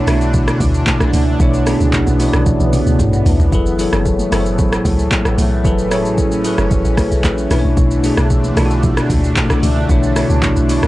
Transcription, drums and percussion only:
0.07 cross-stick, open hi-hat, shaker
0.21 shaker
0.34 kick, low conga, shaker
0.48 cross-stick, shaker
0.60 kick, open hi-hat, high conga, shaker
0.74 shaker
0.87 kick, clap, high conga, shaker
1.00 cross-stick, shaker
1.13 open hi-hat, high conga, low conga, shaker
1.40 kick, low conga, shaker
1.54 shaker
1.67 cross-stick, open hi-hat, shaker
1.80 shaker
1.93 kick, clap, shaker
2.07 high conga, shaker
2.20 open hi-hat, shaker
2.33 cross-stick, shaker
2.46 kick, high tom, low conga, shaker
2.60 high tom, shaker
2.73 open hi-hat, mid tom, high conga, shaker
2.87 shaker
2.99 kick, mid tom, high conga, shaker
3.13 mid tom, shaker
3.26 floor tom, open hi-hat, high conga, low conga, shaker
3.40 floor tom, shaker
3.52 kick, low conga, shaker
3.66 shaker
3.79 open hi-hat, shaker
3.93 cross-stick, shaker
4.06 kick, shaker
4.19 high conga, shaker
4.32 cross-stick, open hi-hat, shaker
4.46 shaker
4.59 kick, low conga, shaker
4.73 cross-stick, shaker
4.85 kick, open hi-hat, high conga, shaker
4.99 shaker
5.11 kick, clap, high conga, shaker
5.25 cross-stick, shaker
5.38 open hi-hat, high conga, low conga, shaker
5.65 kick, low conga, shaker
5.79 shaker
5.91 cross-stick, open hi-hat, shaker
6.05 shaker
6.18 kick, shaker
6.32 high conga, shaker
6.45 open hi-hat, shaker
6.58 cross-stick, shaker
6.71 kick, low conga, shaker
6.85 shaker
6.97 kick, cross-stick, open hi-hat, high conga, shaker
7.11 shaker
7.24 kick, clap, high conga, shaker
7.38 shaker
7.51 cross-stick, open hi-hat, high conga, low conga, shaker
7.77 kick, low conga, shaker
7.91 shaker
8.04 open hi-hat, shaker
8.17 cross-stick, shaker
8.30 kick, shaker
8.44 high conga, shaker
8.57 cross-stick, open hi-hat, shaker
8.70 shaker
8.83 kick, low conga, shaker
8.97 cross-stick, shaker
9.10 kick, open hi-hat, high conga, shaker
9.24 shaker
9.36 kick, clap, high conga, shaker
9.50 cross-stick, shaker
9.63 open hi-hat, high conga, low conga, shaker
9.90 kick, low conga, shaker
10.03 shaker
10.16 cross-stick, open hi-hat, shaker
10.30 shaker
10.43 kick, clap, low conga, shaker
10.56 high conga, shaker
10.69 open hi-hat, shaker
10.83 cross-stick, shaker

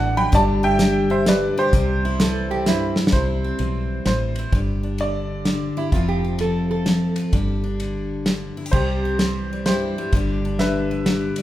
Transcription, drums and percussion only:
0.33 kick, closed hi-hat
0.79 snare, closed hi-hat
1.26 snare, closed hi-hat
1.73 kick, closed hi-hat
2.20 snare, closed hi-hat
2.66 snare, closed hi-hat
2.96 snare
3.07 snare
3.12 kick, ride
3.59 ride
4.06 snare, ride
4.36 ride
4.52 kick, ride
4.98 ride
5.45 snare, ride
5.92 kick, ride
6.39 ride
6.86 snare, ride
7.16 ride
7.33 kick, ride
7.80 ride
8.26 snare, ride
8.73 kick, crash
9.19 snare, ride
9.66 snare, ride
10.13 kick, ride
10.59 snare, ride
11.06 snare, ride
11.36 ride

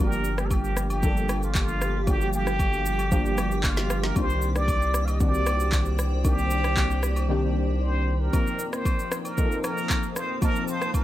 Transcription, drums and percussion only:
0.12 shaker
0.24 shaker
0.38 cross-stick, shaker
0.51 kick, high agogo, shaker
0.64 shaker
0.77 cross-stick, shaker
0.90 high agogo, shaker
1.03 kick, shaker
1.17 shaker
1.29 cross-stick, high agogo, shaker
1.43 shaker
1.55 kick, clap, high agogo, shaker
1.68 shaker
1.81 cross-stick, shaker
2.07 kick, high agogo, shaker
2.21 shaker
2.33 shaker
2.47 cross-stick, shaker
2.59 kick, high agogo, shaker
2.73 shaker
2.86 shaker
2.99 high agogo, shaker
3.12 kick, shaker
3.26 shaker
3.38 cross-stick, high agogo, shaker
3.51 shaker
3.63 kick, clap, high agogo, shaker
3.77 snare, shaker
3.90 cross-stick, shaker
4.03 snare
4.16 kick, high agogo, shaker
4.30 shaker
4.42 shaker
4.56 cross-stick, shaker
4.68 kick, high agogo, shaker
4.82 shaker
4.94 cross-stick, shaker
5.08 high agogo, shaker
5.20 kick, shaker
5.34 shaker
5.46 cross-stick, high agogo, shaker
5.60 shaker
5.72 kick, clap, high agogo, shaker
5.85 shaker
5.99 cross-stick, shaker
6.25 kick, high agogo, shaker
6.38 shaker
6.50 shaker
6.64 cross-stick, shaker
6.77 kick, clap, high agogo, shaker
6.91 shaker
7.03 cross-stick, shaker
7.16 high agogo, shaker
8.33 kick, high agogo, shaker
8.47 shaker
8.59 shaker
8.73 cross-stick, shaker
8.85 kick, high agogo, shaker
8.99 shaker
9.12 cross-stick, shaker
9.25 high agogo, shaker
9.38 kick, shaker
9.52 shaker
9.64 cross-stick, high agogo, shaker
9.78 shaker
9.90 kick, clap, high agogo, shaker
10.03 shaker
10.16 cross-stick, shaker
10.42 kick, high agogo, shaker
10.56 shaker
10.68 shaker
10.82 cross-stick, shaker
10.94 kick, high agogo, shaker

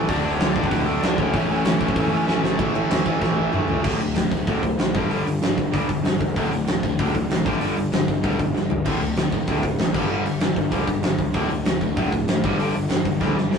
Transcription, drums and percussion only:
0.09 kick, open hi-hat
0.40 snare, open hi-hat
0.56 kick
0.64 kick
0.71 kick, open hi-hat
1.03 snare, open hi-hat
1.18 kick
1.34 kick, open hi-hat
1.65 snare, open hi-hat
1.81 kick
1.88 kick
1.96 kick, open hi-hat
2.28 snare
2.44 snare
2.59 kick, crash
2.75 crash
2.91 snare, crash
3.06 kick, crash
3.22 kick, snare
3.53 mid tom
3.68 floor tom
3.84 kick, crash
4.01 open hi-hat
4.16 snare, open hi-hat
4.32 kick, open hi-hat
4.47 kick, open hi-hat
4.63 kick, open hi-hat
4.79 snare, open hi-hat
4.95 kick, open hi-hat
5.11 open hi-hat
5.27 open hi-hat
5.43 snare, open hi-hat
5.58 kick, open hi-hat
5.74 kick, open hi-hat
5.89 kick, open hi-hat
6.05 snare, open hi-hat
6.21 kick, open hi-hat
6.36 kick, open hi-hat
6.52 open hi-hat
6.68 snare, open hi-hat
6.83 kick, open hi-hat
6.99 kick, open hi-hat
7.15 kick, open hi-hat
7.31 snare, open hi-hat
7.46 kick, open hi-hat
7.61 open hi-hat
7.77 open hi-hat
7.93 snare, open hi-hat
8.08 kick, open hi-hat
8.24 kick, open hi-hat
8.39 kick, open hi-hat
8.56 snare
8.70 floor tom
8.85 kick, open hi-hat, crash
9.01 open hi-hat
9.17 snare, open hi-hat
9.32 kick, open hi-hat
9.47 kick, open hi-hat
9.63 kick, open hi-hat
9.79 snare, open hi-hat
9.94 kick, crash
10.26 open hi-hat
10.41 snare, open hi-hat
10.56 kick, open hi-hat
10.72 kick, open hi-hat
10.87 kick, open hi-hat
11.03 snare, open hi-hat
11.18 kick, open hi-hat
11.34 kick, open hi-hat
11.50 open hi-hat
11.65 snare, open hi-hat
11.81 kick, open hi-hat
11.97 kick, open hi-hat
12.12 kick, open hi-hat
12.28 snare, open hi-hat
12.44 kick, open hi-hat
12.60 open hi-hat
12.75 open hi-hat
12.90 snare, open hi-hat
13.05 kick, open hi-hat
13.21 kick, snare
13.38 snare
13.53 snare

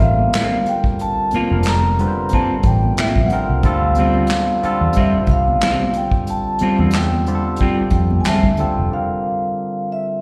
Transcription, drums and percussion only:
0.00 kick, muted conga
0.19 high conga
0.33 snare, clap, closed hi-hat
0.52 high conga, low conga
0.66 closed hi-hat, muted conga
0.84 kick
0.99 closed hi-hat, muted conga
1.31 closed hi-hat, muted conga, high conga
1.50 high conga
1.63 clap, closed hi-hat
1.67 snare
1.83 high conga
1.99 closed hi-hat, muted conga, low conga
2.29 closed hi-hat, muted conga, low conga
2.33 kick
2.63 kick, closed hi-hat, muted conga
2.83 high conga
2.97 snare, clap, closed hi-hat, muted conga
3.15 kick, high conga, low conga
3.30 closed hi-hat, muted conga
3.63 kick, closed hi-hat
3.95 closed hi-hat, muted conga, high conga
4.14 high conga
4.27 clap, closed hi-hat, muted conga
4.31 snare
4.48 high conga
4.63 closed hi-hat, muted conga, low conga
4.93 closed hi-hat, low conga
4.97 kick
5.27 kick, closed hi-hat
5.48 high conga
5.61 snare, clap, closed hi-hat
5.80 high conga, low conga
5.93 closed hi-hat, muted conga
6.11 kick
6.27 closed hi-hat
6.59 closed hi-hat, muted conga, high conga
6.78 high conga
6.91 clap, closed hi-hat
6.95 snare
7.12 high conga
7.26 closed hi-hat, high conga, low conga
7.56 closed hi-hat, muted conga, low conga
7.61 kick
7.90 kick, closed hi-hat, muted conga
8.11 high conga
8.24 snare, clap, closed hi-hat, muted conga
8.43 kick, high conga, low conga
8.57 closed hi-hat, muted conga

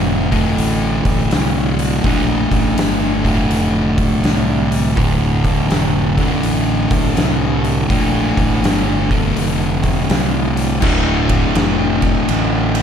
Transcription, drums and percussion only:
0.32 kick, open hi-hat
0.58 open hi-hat
1.05 kick, open hi-hat
1.31 snare, open hi-hat
1.79 open hi-hat
2.04 kick, open hi-hat
2.51 kick, open hi-hat
2.78 snare, open hi-hat
3.25 kick, open hi-hat
3.51 open hi-hat
3.98 kick, open hi-hat
4.24 snare, open hi-hat
4.72 open hi-hat
4.97 kick, open hi-hat
5.44 kick, open hi-hat
5.71 snare, open hi-hat
6.18 kick, open hi-hat
6.43 open hi-hat
6.91 kick, open hi-hat
7.17 snare, open hi-hat
7.64 open hi-hat
7.90 kick, open hi-hat
8.37 kick, open hi-hat
8.64 snare, open hi-hat
9.11 kick, open hi-hat
9.37 open hi-hat
9.83 kick, open hi-hat
10.10 snare, open hi-hat
10.57 open hi-hat
10.82 kick, crash
11.29 kick, ride
11.55 snare, ride
12.02 kick, ride
12.29 ride
12.75 ride

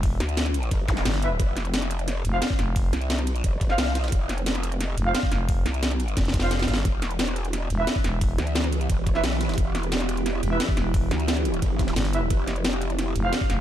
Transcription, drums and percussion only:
0.03 kick, closed hi-hat, open hi-hat
0.20 snare, closed hi-hat, ride
0.29 closed hi-hat
0.37 snare, closed hi-hat, ride
0.46 snare, closed hi-hat
0.54 closed hi-hat, ride
0.63 closed hi-hat
0.71 kick, closed hi-hat, ride
0.88 kick, snare, closed hi-hat, ride
0.97 snare, ride
1.05 snare, closed hi-hat, ride
1.14 snare, ride
1.22 closed hi-hat, ride
1.40 kick, closed hi-hat, ride
1.57 snare, closed hi-hat, ride
1.65 closed hi-hat
1.74 snare, closed hi-hat, ride
1.82 snare, closed hi-hat
1.91 closed hi-hat, ride
1.99 closed hi-hat
2.08 snare, closed hi-hat, ride
2.25 closed hi-hat, ride
2.42 snare, closed hi-hat, ride
2.50 kick
2.59 snare, closed hi-hat, ride
2.76 kick, closed hi-hat, open hi-hat
2.93 snare, closed hi-hat, ride
3.02 closed hi-hat
3.10 snare, closed hi-hat, ride
3.19 snare, closed hi-hat
3.27 closed hi-hat, ride
3.36 closed hi-hat
3.44 kick, closed hi-hat, ride
3.61 kick, closed hi-hat, ride
3.70 snare
3.78 snare, closed hi-hat, ride
3.87 ride
3.95 snare, closed hi-hat, ride
4.04 snare, ride
4.08 snare, ride
4.12 kick, closed hi-hat, ride
4.29 snare, closed hi-hat, ride
4.38 closed hi-hat
4.46 snare, closed hi-hat, ride
4.55 snare, closed hi-hat
4.63 closed hi-hat, ride
4.72 closed hi-hat
4.80 snare, closed hi-hat, ride
4.98 closed hi-hat, ride
5.14 snare, closed hi-hat, ride
5.23 kick
5.32 snare, closed hi-hat, ride
5.49 kick, closed hi-hat, open hi-hat
5.66 snare, closed hi-hat, ride
5.74 closed hi-hat
5.83 snare, closed hi-hat, ride
5.91 snare, closed hi-hat
6.00 closed hi-hat, ride
6.08 closed hi-hat
6.17 kick, snare, closed hi-hat, ride
6.25 snare, closed hi-hat
6.34 kick, snare, closed hi-hat, ride
6.40 snare
6.42 snare, ride
6.51 snare, closed hi-hat, ride
6.59 snare, ride
6.62 snare
6.68 snare, closed hi-hat, ride
6.74 snare
6.76 snare, ride
6.85 kick, closed hi-hat, ride
7.02 snare, closed hi-hat, ride
7.11 closed hi-hat
7.19 snare, closed hi-hat, ride
7.28 snare, closed hi-hat
7.36 closed hi-hat, ride
7.45 closed hi-hat
7.53 snare, closed hi-hat, ride
7.70 closed hi-hat, ride
7.87 snare, closed hi-hat, ride
7.96 kick
8.04 snare, closed hi-hat, ride
8.21 kick, closed hi-hat, open hi-hat
8.38 snare, closed hi-hat, ride
8.47 closed hi-hat
8.55 snare, closed hi-hat, ride
8.64 snare, closed hi-hat
8.72 closed hi-hat, ride
8.81 closed hi-hat
8.90 kick, closed hi-hat, ride
9.07 kick, closed hi-hat, ride
9.15 snare
9.24 snare, closed hi-hat, ride
9.32 ride
9.41 snare, closed hi-hat, ride
9.49 snare, ride
9.54 snare, ride
9.58 kick, closed hi-hat, ride
9.75 snare, closed hi-hat, ride
9.83 closed hi-hat
9.92 snare, closed hi-hat, ride
10.00 snare, closed hi-hat
10.09 closed hi-hat, ride
10.17 closed hi-hat
10.26 snare, closed hi-hat, ride
10.43 closed hi-hat, ride
10.60 snare, closed hi-hat, ride
10.69 kick
10.77 snare, closed hi-hat, ride
10.94 kick, closed hi-hat, open hi-hat
11.11 snare, closed hi-hat, ride
11.20 closed hi-hat
11.28 snare, closed hi-hat, ride
11.37 snare, closed hi-hat
11.45 closed hi-hat, ride
11.54 closed hi-hat
11.62 kick, closed hi-hat, ride
11.79 kick, snare, closed hi-hat, ride
11.88 snare, ride
11.96 snare, closed hi-hat, ride
12.05 snare, ride
12.13 closed hi-hat, ride
12.30 kick, closed hi-hat, ride
12.47 snare, closed hi-hat, ride
12.56 closed hi-hat
12.64 snare, closed hi-hat, ride
12.73 snare, closed hi-hat
12.82 closed hi-hat, ride
12.90 closed hi-hat
12.99 snare, closed hi-hat, ride
13.16 closed hi-hat, ride
13.33 snare, closed hi-hat, ride
13.41 kick
13.50 snare, closed hi-hat, ride

